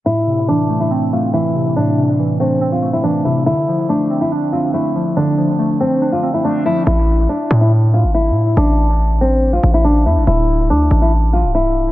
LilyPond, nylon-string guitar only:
\new Staff \with { instrumentName = "Nylon-string guitar" } { \time 4/4 \key a \minor \tempo 4 = 141 e'4 d'8. e'16 r8 f'8 e'4 | d'4. c'8. f'8 e'16 d'8 e'8 | e'4 d'8. e'16 r8 f'8 e'4 | d'4. c'8. f'8 e'16 d'8 e'8 |
e'4 d'8. e'16 r8 f'8 e'4 | d'4. c'8. f'8 e'16 d'8 e'8 | e'4 d'8. e'16 r8 f'8 e'4 | }